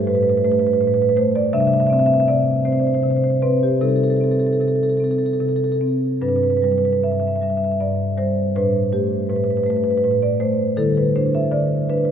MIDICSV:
0, 0, Header, 1, 2, 480
1, 0, Start_track
1, 0, Tempo, 741656
1, 997, Time_signature, 6, 3, 24, 8
1, 1966, Tempo, 789474
1, 3406, Tempo, 814111
1, 4366, Tempo, 766284
1, 4846, Tempo, 746269
1, 7620, End_track
2, 0, Start_track
2, 0, Title_t, "Marimba"
2, 0, Program_c, 0, 12
2, 0, Note_on_c, 0, 55, 52
2, 0, Note_on_c, 0, 57, 63
2, 0, Note_on_c, 0, 62, 50
2, 43, Note_on_c, 0, 45, 59
2, 46, Note_on_c, 0, 71, 89
2, 97, Note_off_c, 0, 71, 0
2, 97, Note_on_c, 0, 71, 70
2, 148, Note_off_c, 0, 71, 0
2, 148, Note_on_c, 0, 71, 72
2, 191, Note_off_c, 0, 71, 0
2, 191, Note_on_c, 0, 71, 74
2, 242, Note_off_c, 0, 71, 0
2, 242, Note_on_c, 0, 71, 74
2, 281, Note_off_c, 0, 57, 0
2, 289, Note_off_c, 0, 71, 0
2, 289, Note_on_c, 0, 57, 61
2, 289, Note_on_c, 0, 71, 74
2, 334, Note_off_c, 0, 71, 0
2, 334, Note_on_c, 0, 71, 76
2, 384, Note_off_c, 0, 71, 0
2, 384, Note_on_c, 0, 71, 74
2, 431, Note_off_c, 0, 71, 0
2, 431, Note_on_c, 0, 71, 76
2, 474, Note_off_c, 0, 71, 0
2, 474, Note_on_c, 0, 71, 73
2, 515, Note_off_c, 0, 45, 0
2, 522, Note_off_c, 0, 71, 0
2, 522, Note_on_c, 0, 71, 75
2, 523, Note_on_c, 0, 45, 63
2, 565, Note_off_c, 0, 71, 0
2, 565, Note_on_c, 0, 71, 72
2, 608, Note_off_c, 0, 71, 0
2, 608, Note_on_c, 0, 71, 76
2, 659, Note_off_c, 0, 71, 0
2, 659, Note_on_c, 0, 71, 75
2, 706, Note_off_c, 0, 71, 0
2, 706, Note_on_c, 0, 71, 76
2, 734, Note_off_c, 0, 71, 0
2, 745, Note_off_c, 0, 57, 0
2, 753, Note_on_c, 0, 57, 65
2, 758, Note_on_c, 0, 72, 94
2, 877, Note_off_c, 0, 72, 0
2, 877, Note_on_c, 0, 74, 89
2, 965, Note_off_c, 0, 55, 0
2, 966, Note_off_c, 0, 62, 0
2, 982, Note_off_c, 0, 45, 0
2, 986, Note_off_c, 0, 57, 0
2, 991, Note_on_c, 0, 76, 102
2, 992, Note_on_c, 0, 48, 82
2, 992, Note_on_c, 0, 55, 53
2, 995, Note_on_c, 0, 62, 56
2, 996, Note_off_c, 0, 74, 0
2, 1037, Note_off_c, 0, 76, 0
2, 1037, Note_on_c, 0, 76, 83
2, 1081, Note_off_c, 0, 76, 0
2, 1081, Note_on_c, 0, 76, 86
2, 1122, Note_off_c, 0, 76, 0
2, 1122, Note_on_c, 0, 76, 80
2, 1164, Note_off_c, 0, 76, 0
2, 1164, Note_on_c, 0, 76, 87
2, 1208, Note_off_c, 0, 76, 0
2, 1208, Note_on_c, 0, 76, 82
2, 1229, Note_on_c, 0, 60, 60
2, 1247, Note_off_c, 0, 76, 0
2, 1247, Note_on_c, 0, 76, 87
2, 1290, Note_off_c, 0, 76, 0
2, 1290, Note_on_c, 0, 76, 79
2, 1334, Note_off_c, 0, 76, 0
2, 1334, Note_on_c, 0, 76, 93
2, 1381, Note_off_c, 0, 76, 0
2, 1381, Note_on_c, 0, 76, 81
2, 1424, Note_off_c, 0, 76, 0
2, 1424, Note_on_c, 0, 76, 87
2, 1453, Note_off_c, 0, 76, 0
2, 1468, Note_off_c, 0, 48, 0
2, 1475, Note_on_c, 0, 48, 59
2, 1475, Note_on_c, 0, 74, 85
2, 1706, Note_off_c, 0, 60, 0
2, 1708, Note_off_c, 0, 74, 0
2, 1714, Note_on_c, 0, 60, 54
2, 1716, Note_on_c, 0, 72, 80
2, 1764, Note_off_c, 0, 72, 0
2, 1764, Note_on_c, 0, 72, 65
2, 1809, Note_off_c, 0, 72, 0
2, 1809, Note_on_c, 0, 72, 68
2, 1856, Note_off_c, 0, 72, 0
2, 1856, Note_on_c, 0, 72, 60
2, 1905, Note_off_c, 0, 72, 0
2, 1905, Note_on_c, 0, 72, 72
2, 1957, Note_off_c, 0, 48, 0
2, 1958, Note_off_c, 0, 72, 0
2, 1958, Note_on_c, 0, 72, 60
2, 1965, Note_on_c, 0, 48, 56
2, 2005, Note_off_c, 0, 72, 0
2, 2005, Note_on_c, 0, 72, 69
2, 2043, Note_off_c, 0, 72, 0
2, 2043, Note_on_c, 0, 72, 64
2, 2088, Note_off_c, 0, 72, 0
2, 2088, Note_on_c, 0, 72, 71
2, 2127, Note_off_c, 0, 72, 0
2, 2127, Note_on_c, 0, 72, 61
2, 2182, Note_off_c, 0, 72, 0
2, 2196, Note_off_c, 0, 60, 0
2, 2199, Note_on_c, 0, 71, 80
2, 2203, Note_on_c, 0, 60, 63
2, 2319, Note_off_c, 0, 71, 0
2, 2326, Note_on_c, 0, 67, 65
2, 2414, Note_off_c, 0, 55, 0
2, 2415, Note_off_c, 0, 62, 0
2, 2426, Note_off_c, 0, 48, 0
2, 2434, Note_off_c, 0, 60, 0
2, 2436, Note_on_c, 0, 48, 65
2, 2436, Note_on_c, 0, 63, 48
2, 2437, Note_on_c, 0, 69, 72
2, 2438, Note_on_c, 0, 55, 42
2, 2443, Note_off_c, 0, 67, 0
2, 2481, Note_off_c, 0, 69, 0
2, 2481, Note_on_c, 0, 69, 55
2, 2524, Note_off_c, 0, 69, 0
2, 2524, Note_on_c, 0, 69, 59
2, 2572, Note_off_c, 0, 69, 0
2, 2572, Note_on_c, 0, 69, 60
2, 2612, Note_off_c, 0, 69, 0
2, 2612, Note_on_c, 0, 69, 62
2, 2652, Note_off_c, 0, 69, 0
2, 2652, Note_on_c, 0, 69, 60
2, 2678, Note_on_c, 0, 60, 50
2, 2696, Note_off_c, 0, 69, 0
2, 2696, Note_on_c, 0, 69, 62
2, 2741, Note_off_c, 0, 69, 0
2, 2741, Note_on_c, 0, 69, 60
2, 2791, Note_off_c, 0, 69, 0
2, 2791, Note_on_c, 0, 69, 65
2, 2834, Note_off_c, 0, 69, 0
2, 2834, Note_on_c, 0, 69, 56
2, 2871, Note_off_c, 0, 69, 0
2, 2871, Note_on_c, 0, 69, 65
2, 2912, Note_off_c, 0, 48, 0
2, 2919, Note_on_c, 0, 48, 52
2, 2922, Note_off_c, 0, 69, 0
2, 2922, Note_on_c, 0, 69, 60
2, 2962, Note_off_c, 0, 69, 0
2, 2962, Note_on_c, 0, 69, 64
2, 3011, Note_off_c, 0, 69, 0
2, 3011, Note_on_c, 0, 69, 58
2, 3056, Note_off_c, 0, 69, 0
2, 3056, Note_on_c, 0, 69, 63
2, 3095, Note_off_c, 0, 69, 0
2, 3095, Note_on_c, 0, 69, 59
2, 3142, Note_off_c, 0, 69, 0
2, 3142, Note_on_c, 0, 69, 61
2, 3153, Note_off_c, 0, 60, 0
2, 3160, Note_on_c, 0, 60, 51
2, 3184, Note_off_c, 0, 69, 0
2, 3184, Note_on_c, 0, 69, 55
2, 3226, Note_off_c, 0, 69, 0
2, 3226, Note_on_c, 0, 69, 64
2, 3270, Note_off_c, 0, 69, 0
2, 3270, Note_on_c, 0, 69, 58
2, 3318, Note_off_c, 0, 69, 0
2, 3318, Note_on_c, 0, 69, 61
2, 3361, Note_off_c, 0, 69, 0
2, 3361, Note_on_c, 0, 69, 58
2, 3399, Note_off_c, 0, 48, 0
2, 3405, Note_off_c, 0, 69, 0
2, 3405, Note_on_c, 0, 69, 64
2, 3406, Note_on_c, 0, 48, 55
2, 3454, Note_off_c, 0, 69, 0
2, 3454, Note_on_c, 0, 69, 61
2, 3498, Note_off_c, 0, 69, 0
2, 3498, Note_on_c, 0, 69, 62
2, 3544, Note_off_c, 0, 69, 0
2, 3544, Note_on_c, 0, 69, 60
2, 3591, Note_off_c, 0, 69, 0
2, 3591, Note_on_c, 0, 69, 62
2, 3618, Note_off_c, 0, 69, 0
2, 3637, Note_off_c, 0, 60, 0
2, 3644, Note_on_c, 0, 60, 55
2, 3859, Note_off_c, 0, 63, 0
2, 3860, Note_off_c, 0, 55, 0
2, 3871, Note_off_c, 0, 48, 0
2, 3878, Note_off_c, 0, 60, 0
2, 3882, Note_on_c, 0, 43, 59
2, 3883, Note_on_c, 0, 54, 41
2, 3883, Note_on_c, 0, 62, 42
2, 3885, Note_on_c, 0, 71, 78
2, 3924, Note_off_c, 0, 71, 0
2, 3924, Note_on_c, 0, 71, 65
2, 3969, Note_off_c, 0, 71, 0
2, 3969, Note_on_c, 0, 71, 71
2, 4011, Note_off_c, 0, 71, 0
2, 4011, Note_on_c, 0, 71, 61
2, 4052, Note_off_c, 0, 71, 0
2, 4052, Note_on_c, 0, 71, 64
2, 4091, Note_off_c, 0, 71, 0
2, 4091, Note_on_c, 0, 71, 63
2, 4123, Note_on_c, 0, 55, 54
2, 4134, Note_off_c, 0, 71, 0
2, 4134, Note_on_c, 0, 71, 66
2, 4179, Note_off_c, 0, 71, 0
2, 4179, Note_on_c, 0, 71, 66
2, 4216, Note_off_c, 0, 71, 0
2, 4216, Note_on_c, 0, 71, 70
2, 4258, Note_off_c, 0, 71, 0
2, 4258, Note_on_c, 0, 71, 66
2, 4302, Note_off_c, 0, 71, 0
2, 4302, Note_on_c, 0, 71, 68
2, 4347, Note_off_c, 0, 71, 0
2, 4362, Note_off_c, 0, 43, 0
2, 4366, Note_on_c, 0, 76, 69
2, 4369, Note_on_c, 0, 43, 48
2, 4418, Note_off_c, 0, 76, 0
2, 4418, Note_on_c, 0, 76, 54
2, 4468, Note_off_c, 0, 76, 0
2, 4468, Note_on_c, 0, 76, 61
2, 4515, Note_off_c, 0, 76, 0
2, 4515, Note_on_c, 0, 76, 55
2, 4567, Note_off_c, 0, 76, 0
2, 4567, Note_on_c, 0, 76, 62
2, 4598, Note_off_c, 0, 55, 0
2, 4606, Note_on_c, 0, 55, 50
2, 4613, Note_off_c, 0, 76, 0
2, 4613, Note_on_c, 0, 76, 57
2, 4657, Note_off_c, 0, 76, 0
2, 4657, Note_on_c, 0, 76, 58
2, 4703, Note_off_c, 0, 76, 0
2, 4703, Note_on_c, 0, 76, 57
2, 4747, Note_off_c, 0, 76, 0
2, 4747, Note_on_c, 0, 76, 58
2, 4792, Note_off_c, 0, 76, 0
2, 4792, Note_on_c, 0, 76, 57
2, 4827, Note_off_c, 0, 76, 0
2, 4842, Note_off_c, 0, 43, 0
2, 4848, Note_on_c, 0, 74, 66
2, 4850, Note_on_c, 0, 43, 53
2, 5078, Note_off_c, 0, 74, 0
2, 5080, Note_off_c, 0, 55, 0
2, 5087, Note_on_c, 0, 55, 56
2, 5089, Note_on_c, 0, 72, 85
2, 5300, Note_off_c, 0, 54, 0
2, 5300, Note_off_c, 0, 62, 0
2, 5314, Note_off_c, 0, 43, 0
2, 5319, Note_off_c, 0, 72, 0
2, 5320, Note_off_c, 0, 55, 0
2, 5333, Note_on_c, 0, 45, 67
2, 5333, Note_on_c, 0, 55, 48
2, 5335, Note_on_c, 0, 62, 45
2, 5336, Note_on_c, 0, 71, 89
2, 5560, Note_off_c, 0, 71, 0
2, 5568, Note_on_c, 0, 57, 53
2, 5571, Note_on_c, 0, 67, 69
2, 5792, Note_off_c, 0, 67, 0
2, 5798, Note_off_c, 0, 45, 0
2, 5806, Note_on_c, 0, 45, 58
2, 5808, Note_on_c, 0, 71, 82
2, 5850, Note_off_c, 0, 71, 0
2, 5850, Note_on_c, 0, 71, 67
2, 5899, Note_off_c, 0, 71, 0
2, 5899, Note_on_c, 0, 71, 71
2, 5942, Note_off_c, 0, 71, 0
2, 5942, Note_on_c, 0, 71, 63
2, 5985, Note_off_c, 0, 71, 0
2, 5985, Note_on_c, 0, 71, 68
2, 6026, Note_off_c, 0, 71, 0
2, 6026, Note_on_c, 0, 71, 66
2, 6037, Note_off_c, 0, 57, 0
2, 6044, Note_on_c, 0, 57, 57
2, 6069, Note_off_c, 0, 71, 0
2, 6069, Note_on_c, 0, 71, 75
2, 6110, Note_off_c, 0, 71, 0
2, 6110, Note_on_c, 0, 71, 64
2, 6156, Note_off_c, 0, 71, 0
2, 6156, Note_on_c, 0, 71, 73
2, 6200, Note_off_c, 0, 71, 0
2, 6200, Note_on_c, 0, 71, 67
2, 6245, Note_off_c, 0, 71, 0
2, 6245, Note_on_c, 0, 71, 73
2, 6275, Note_off_c, 0, 45, 0
2, 6283, Note_on_c, 0, 45, 61
2, 6287, Note_off_c, 0, 71, 0
2, 6287, Note_on_c, 0, 71, 69
2, 6331, Note_off_c, 0, 71, 0
2, 6331, Note_on_c, 0, 71, 66
2, 6373, Note_off_c, 0, 71, 0
2, 6405, Note_on_c, 0, 74, 75
2, 6510, Note_off_c, 0, 57, 0
2, 6517, Note_on_c, 0, 57, 67
2, 6519, Note_off_c, 0, 74, 0
2, 6520, Note_on_c, 0, 72, 90
2, 6730, Note_off_c, 0, 55, 0
2, 6731, Note_off_c, 0, 62, 0
2, 6744, Note_off_c, 0, 45, 0
2, 6747, Note_off_c, 0, 72, 0
2, 6748, Note_off_c, 0, 57, 0
2, 6754, Note_on_c, 0, 50, 68
2, 6757, Note_on_c, 0, 55, 49
2, 6757, Note_on_c, 0, 69, 92
2, 6759, Note_on_c, 0, 64, 52
2, 6875, Note_off_c, 0, 69, 0
2, 6887, Note_on_c, 0, 71, 80
2, 7000, Note_off_c, 0, 71, 0
2, 7005, Note_on_c, 0, 72, 79
2, 7006, Note_on_c, 0, 62, 58
2, 7120, Note_off_c, 0, 72, 0
2, 7127, Note_on_c, 0, 76, 71
2, 7228, Note_off_c, 0, 50, 0
2, 7235, Note_on_c, 0, 50, 54
2, 7235, Note_on_c, 0, 74, 87
2, 7242, Note_off_c, 0, 76, 0
2, 7471, Note_off_c, 0, 74, 0
2, 7474, Note_off_c, 0, 62, 0
2, 7480, Note_on_c, 0, 71, 85
2, 7482, Note_on_c, 0, 62, 53
2, 7532, Note_off_c, 0, 71, 0
2, 7532, Note_on_c, 0, 71, 65
2, 7578, Note_off_c, 0, 71, 0
2, 7578, Note_on_c, 0, 71, 70
2, 7620, Note_off_c, 0, 50, 0
2, 7620, Note_off_c, 0, 55, 0
2, 7620, Note_off_c, 0, 62, 0
2, 7620, Note_off_c, 0, 64, 0
2, 7620, Note_off_c, 0, 71, 0
2, 7620, End_track
0, 0, End_of_file